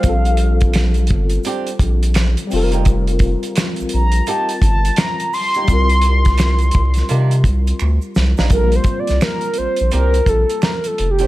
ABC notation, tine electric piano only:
X:1
M:4/4
L:1/8
Q:"Swing 16ths" 1/4=85
K:Bb
V:1 name="Tine electric piano"
[G,CFA]6- [G,CFA] [G,CFAB]- | [G,CFAB]6- [G,CFAB] z | [G,CFB]8 | [G,B,CFA]8 |]